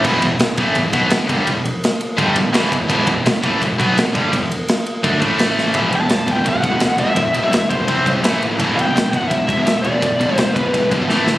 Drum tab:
CC |x---------------|----------------|----------------|----------------|
RD |x-x-x-x-x-x-x-x-|x-x-x-x-x-x-x-x-|x-x-x-x-x-x-x-x-|x-x-x-x-x-x-x---|
SD |----o-------o---|----o-------oo--|----o-------oo--|----o-------ooo-|
BD |o-o---o-o-o---o-|o-------o-o---o-|o-o---o-o-o---o-|o-------o-o-----|

CC |----------------|----------------|----------------|----------------|
RD |x-x-x-x-x-x-x-x-|x-x-x-x-x-x-x-x-|x-x-x-x-x-x-x-x-|x-x-x-x-x-x-----|
SD |----o-------o---|----o-------o---|----o-------o---|----o-------o-o-|
BD |o-----o-o-o-----|o-----o-o-o-----|o-----o-o-o-----|o-----o-o-o-----|